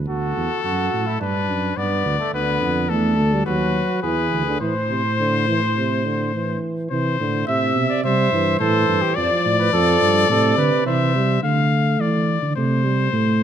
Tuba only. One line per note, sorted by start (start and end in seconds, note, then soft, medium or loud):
0.09 0.36 D2 medium
0.37 0.50 E2 medium
0.65 0.92 F#2 medium
0.93 1.20 A2 medium
1.21 1.50 G2 medium
1.49 1.77 F#2 medium
1.77 2.05 G2 medium
2.05 2.18 D2 medium
2.33 2.61 D2 medium
2.62 2.91 F2 medium
2.90 3.19 E2 medium
3.18 3.46 D2 medium
3.46 3.83 D#2 medium
4.03 4.30 E2 medium
4.32 4.60 D2 medium
4.60 6.58 A2 medium
6.91 7.17 C3 medium
7.20 7.47 A2 medium
7.48 7.75 A2 medium
7.75 7.88 B2 medium
8.04 8.31 C3 medium
8.32 8.59 G2 medium
8.60 8.88 A2 medium
8.88 9.01 G2 medium
9.17 9.30 F2 medium
9.45 9.73 A2 medium
9.73 10.01 F2 medium
10.01 10.29 G2 medium
10.29 10.57 A2 medium
10.58 10.71 D3 medium
10.86 11.41 C3 medium
11.42 11.95 D3 medium
11.99 12.41 E3 medium
12.42 12.56 D3 medium
12.56 13.12 C3 medium
13.12 13.43 A2 medium